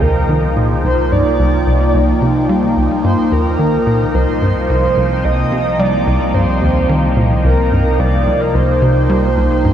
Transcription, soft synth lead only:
0, 0, Header, 1, 2, 480
1, 0, Start_track
1, 0, Key_signature, -3, "minor"
1, 0, Tempo, 550459
1, 732, Time_signature, 4, 2, 24, 8
1, 8489, End_track
2, 0, Start_track
2, 0, Title_t, "Soft synth lead"
2, 0, Program_c, 0, 80
2, 15, Note_on_c, 0, 70, 88
2, 460, Note_off_c, 0, 70, 0
2, 732, Note_on_c, 0, 72, 100
2, 974, Note_on_c, 0, 74, 112
2, 987, Note_off_c, 0, 72, 0
2, 1933, Note_off_c, 0, 74, 0
2, 2656, Note_on_c, 0, 72, 95
2, 2897, Note_on_c, 0, 70, 91
2, 2910, Note_off_c, 0, 72, 0
2, 3614, Note_on_c, 0, 72, 101
2, 3627, Note_off_c, 0, 70, 0
2, 4087, Note_off_c, 0, 72, 0
2, 4092, Note_on_c, 0, 72, 99
2, 4572, Note_on_c, 0, 75, 117
2, 4585, Note_off_c, 0, 72, 0
2, 5050, Note_on_c, 0, 74, 108
2, 5064, Note_off_c, 0, 75, 0
2, 5529, Note_on_c, 0, 72, 95
2, 5542, Note_off_c, 0, 74, 0
2, 6251, Note_off_c, 0, 72, 0
2, 6491, Note_on_c, 0, 70, 100
2, 6970, Note_on_c, 0, 74, 114
2, 6983, Note_off_c, 0, 70, 0
2, 7333, Note_on_c, 0, 70, 93
2, 7346, Note_off_c, 0, 74, 0
2, 7453, Note_on_c, 0, 72, 104
2, 7466, Note_off_c, 0, 70, 0
2, 8489, Note_off_c, 0, 72, 0
2, 8489, End_track
0, 0, End_of_file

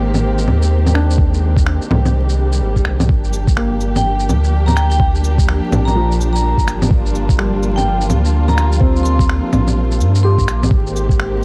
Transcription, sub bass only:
0, 0, Header, 1, 2, 480
1, 0, Start_track
1, 0, Tempo, 476190
1, 1196, Time_signature, 4, 2, 24, 8
1, 11537, End_track
2, 0, Start_track
2, 0, Title_t, "Sub bass"
2, 0, Program_c, 0, 38
2, 0, Note_on_c, 0, 32, 99
2, 474, Note_on_c, 0, 39, 86
2, 489, Note_off_c, 0, 32, 0
2, 1804, Note_off_c, 0, 39, 0
2, 1917, Note_on_c, 0, 36, 80
2, 2633, Note_off_c, 0, 36, 0
2, 2639, Note_on_c, 0, 32, 82
2, 2863, Note_off_c, 0, 32, 0
2, 2880, Note_on_c, 0, 36, 85
2, 3103, Note_off_c, 0, 36, 0
2, 3115, Note_on_c, 0, 31, 98
2, 4320, Note_on_c, 0, 38, 87
2, 4335, Note_off_c, 0, 31, 0
2, 5647, Note_off_c, 0, 38, 0
2, 5759, Note_on_c, 0, 34, 85
2, 6607, Note_off_c, 0, 34, 0
2, 6629, Note_on_c, 0, 31, 83
2, 6947, Note_off_c, 0, 31, 0
2, 6963, Note_on_c, 0, 31, 100
2, 8162, Note_on_c, 0, 38, 85
2, 8177, Note_off_c, 0, 31, 0
2, 9488, Note_off_c, 0, 38, 0
2, 9602, Note_on_c, 0, 34, 81
2, 10079, Note_on_c, 0, 43, 103
2, 10095, Note_off_c, 0, 34, 0
2, 10546, Note_off_c, 0, 43, 0
2, 10554, Note_on_c, 0, 34, 96
2, 10781, Note_off_c, 0, 34, 0
2, 10799, Note_on_c, 0, 32, 99
2, 11537, Note_off_c, 0, 32, 0
2, 11537, End_track
0, 0, End_of_file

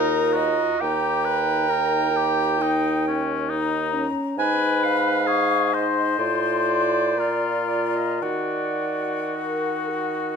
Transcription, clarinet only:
0, 0, Header, 1, 2, 480
1, 0, Start_track
1, 0, Key_signature, -6, "minor"
1, 0, Tempo, 898204
1, 428, Time_signature, 4, 2, 24, 8
1, 3303, Tempo, 972447
1, 3783, Tempo, 1090909
1, 5195, End_track
2, 0, Start_track
2, 0, Title_t, "Clarinet"
2, 0, Program_c, 0, 71
2, 0, Note_on_c, 0, 70, 107
2, 192, Note_on_c, 0, 75, 97
2, 200, Note_off_c, 0, 70, 0
2, 432, Note_on_c, 0, 79, 105
2, 440, Note_off_c, 0, 75, 0
2, 2101, Note_off_c, 0, 79, 0
2, 2345, Note_on_c, 0, 80, 115
2, 2584, Note_on_c, 0, 77, 100
2, 2592, Note_off_c, 0, 80, 0
2, 3062, Note_on_c, 0, 75, 75
2, 3070, Note_off_c, 0, 77, 0
2, 3305, Note_on_c, 0, 74, 103
2, 3313, Note_off_c, 0, 75, 0
2, 4008, Note_off_c, 0, 74, 0
2, 4011, Note_on_c, 0, 74, 66
2, 4136, Note_on_c, 0, 75, 60
2, 4143, Note_off_c, 0, 74, 0
2, 4248, Note_off_c, 0, 75, 0
2, 4251, Note_on_c, 0, 74, 72
2, 4750, Note_on_c, 0, 75, 53
2, 4757, Note_off_c, 0, 74, 0
2, 5195, Note_off_c, 0, 75, 0
2, 5195, End_track
0, 0, End_of_file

